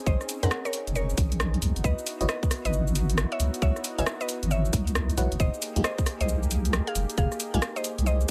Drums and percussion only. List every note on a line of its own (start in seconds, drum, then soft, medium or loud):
0.06 kick loud
0.06 shaker soft
0.21 cross-stick soft
0.21 shaker soft
0.29 open hi-hat loud
0.29 shaker medium
0.43 closed hi-hat medium
0.43 shaker soft
0.51 cross-stick loud
0.51 shaker soft
0.65 shaker soft
0.73 open hi-hat medium
0.73 shaker medium
0.87 closed hi-hat medium
0.87 shaker soft
0.95 shaker soft
1.10 shaker soft
1.18 kick loud
1.18 open hi-hat loud
1.18 shaker medium
1.32 closed hi-hat medium
1.32 shaker soft
1.40 cross-stick loud
1.40 shaker soft
1.54 closed hi-hat medium
1.62 open hi-hat loud
1.62 shaker medium
1.76 closed hi-hat medium
1.76 shaker soft
1.84 kick loud
1.84 shaker soft
1.98 shaker soft
2.07 open hi-hat loud
2.07 shaker medium
2.21 closed hi-hat medium
2.21 shaker soft
2.29 cross-stick loud
2.29 shaker soft
2.43 kick loud
2.43 shaker soft
2.51 cross-stick medium
2.51 open hi-hat medium
2.51 shaker medium
2.65 closed hi-hat medium
2.65 shaker soft
2.73 shaker soft
2.87 shaker soft
2.95 open hi-hat loud
2.95 shaker medium
3.10 closed hi-hat medium
3.10 shaker soft
3.18 cross-stick loud
3.18 shaker soft
3.32 closed hi-hat soft
3.40 open hi-hat medium
3.40 shaker medium
3.54 closed hi-hat medium
3.54 shaker soft
3.62 kick loud
3.62 shaker soft
3.76 cross-stick soft
3.76 shaker soft
3.84 open hi-hat loud
3.84 shaker medium
3.98 closed hi-hat medium
3.98 shaker soft
4.06 cross-stick loud
4.06 shaker soft
4.21 shaker soft
4.29 open hi-hat medium
4.29 shaker medium
4.43 closed hi-hat medium
4.43 shaker soft
4.51 shaker soft
4.65 shaker soft
4.73 kick loud
4.73 open hi-hat loud
4.73 shaker medium
4.87 closed hi-hat medium
4.87 shaker soft
4.95 cross-stick loud
4.95 shaker soft
5.10 closed hi-hat medium
5.10 shaker soft
5.18 open hi-hat medium
5.18 shaker medium
5.32 closed hi-hat medium
5.32 shaker soft
5.40 kick loud
5.40 shaker soft
5.54 shaker soft
5.62 open hi-hat loud
5.62 shaker medium
5.76 closed hi-hat medium
5.76 shaker soft
5.84 cross-stick loud
5.84 shaker soft
5.98 kick loud
5.98 shaker soft
6.06 cross-stick medium
6.06 open hi-hat medium
6.06 shaker medium
6.21 closed hi-hat medium
6.21 shaker soft
6.29 shaker soft
6.43 shaker soft
6.51 open hi-hat loud
6.51 shaker medium
6.65 closed hi-hat medium
6.65 shaker soft
6.73 cross-stick loud
6.73 shaker soft
6.87 closed hi-hat medium
6.95 open hi-hat medium
6.95 shaker medium
7.10 closed hi-hat medium
7.10 shaker soft
7.18 kick loud
7.18 shaker soft
7.32 cross-stick soft
7.32 shaker soft
7.40 open hi-hat loud
7.40 shaker medium
7.54 closed hi-hat medium
7.54 shaker soft
7.62 cross-stick loud
7.62 shaker soft
7.76 shaker soft
7.84 open hi-hat medium
7.84 shaker medium
7.98 closed hi-hat medium
7.98 shaker soft
8.06 shaker soft
8.21 shaker soft